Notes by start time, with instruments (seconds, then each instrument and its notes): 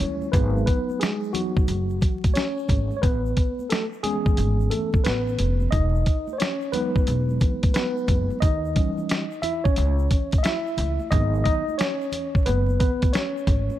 Already playing: tine electric piano G3 C#4 E4 C#5
0.00 upright bass D#2, closed hi-hat
0.22 high conga, shaker
0.32 upright bass G#1, tine electric piano F#3 B3 D#4 B4, kick, closed hi-hat, shaker
0.57 shaker
0.66 tine electric piano B3 B4, kick, closed hi-hat, shaker
0.90 high conga, shaker
1.00 tine electric piano G#3 G#4, snare, closed hi-hat, shaker
1.23 shaker
1.33 tine electric piano F#3 B3 D#4 F#4, closed hi-hat, low conga, shaker
1.57 kick, shaker
1.67 upright bass F#1, closed hi-hat, high conga, shaker
1.90 shaker
2.01 kick, closed hi-hat, low conga, shaker
2.24 kick, closed hi-hat, high conga, shaker
2.34 tine electric piano C#4 C#5, snare, closed hi-hat, shaker
2.58 shaker
2.68 upright bass G#1, kick, closed hi-hat, high conga, low conga, shaker
2.91 high conga, shaker
2.97 tine electric piano C#5
3.02 upright bass A1, tine electric piano B3 B4, kick, closed hi-hat, shaker
3.26 shaker
3.37 kick, closed hi-hat, shaker
3.59 high conga, shaker
3.70 tine electric piano A3 A4, snare, closed hi-hat, shaker
3.93 shaker
4.03 tine electric piano E3 G#3 B3 C#4 G#4, closed hi-hat, low conga, shaker
4.26 kick, shaker
4.37 upright bass G#1, closed hi-hat, high conga, shaker
4.60 shaker
4.70 tine electric piano A3 A4, closed hi-hat, low conga, shaker
4.94 kick, high conga, shaker
5.04 upright bass A1, tine electric piano B3 B4, snare, closed hi-hat, shaker
5.28 shaker
5.38 upright bass F1, closed hi-hat, high conga, low conga, shaker
5.60 high conga, shaker
5.71 upright bass E1, tine electric piano D#4 D#5, kick, closed hi-hat, shaker
5.95 shaker
6.06 kick, closed hi-hat, shaker
6.27 high conga, shaker
6.33 tine electric piano C5
6.38 tine electric piano C#4 C#5, snare, closed hi-hat, shaker
6.61 shaker
6.72 tine electric piano F#3 G#3 B3 D#4 B4, closed hi-hat, low conga, shaker
6.96 kick, shaker
7.07 upright bass E1, closed hi-hat, high conga, shaker
7.29 shaker
7.41 kick, closed hi-hat, low conga, shaker
7.63 kick, closed hi-hat, high conga, shaker
7.74 tine electric piano B3 B4, snare, closed hi-hat, shaker
7.97 shaker
8.08 upright bass F#1, kick, closed hi-hat, high conga, low conga, shaker
8.30 high conga, shaker
8.40 upright bass D#2, tine electric piano D#4 D#5, kick, closed hi-hat, shaker
8.65 shaker
8.75 tine electric piano E3 G3 C#4, kick, closed hi-hat, shaker
8.98 high conga, shaker
9.09 snare, closed hi-hat, shaker
9.31 shaker
9.42 tine electric piano E4 E5, closed hi-hat, low conga, shaker
9.64 tine electric piano C#4 C#5, kick, shaker
9.76 upright bass C#2, closed hi-hat, high conga, shaker
9.99 shaker
10.11 kick, closed hi-hat, low conga, shaker
10.32 kick, closed hi-hat, high conga, shaker
10.38 tine electric piano D#5
10.43 tine electric piano E4 E5, snare, closed hi-hat, shaker
10.67 shaker
10.77 upright bass C#2, closed hi-hat, high conga, low conga, shaker
10.99 high conga, shaker
11.11 upright bass G#1, tine electric piano D#3 F#3 B3 D#4 D#5, kick, closed hi-hat, shaker
11.35 shaker
11.44 tine electric piano D#4 D#5, kick, closed hi-hat, shaker
11.68 high conga, shaker
11.78 tine electric piano C#4 C#5, snare, closed hi-hat, shaker
12.01 shaker
12.12 closed hi-hat, low conga, shaker
12.35 kick, shaker
12.46 upright bass F#1, tine electric piano B3 B4, closed hi-hat, high conga, shaker
12.69 shaker
12.80 tine electric piano B3 B4, kick, closed hi-hat, low conga, shaker
13.02 kick, closed hi-hat, high conga, shaker
13.13 tine electric piano C#4 C#5, snare, closed hi-hat, shaker
13.37 shaker
13.47 upright bass G#1, kick, closed hi-hat, high conga, low conga, shaker
13.70 high conga, shaker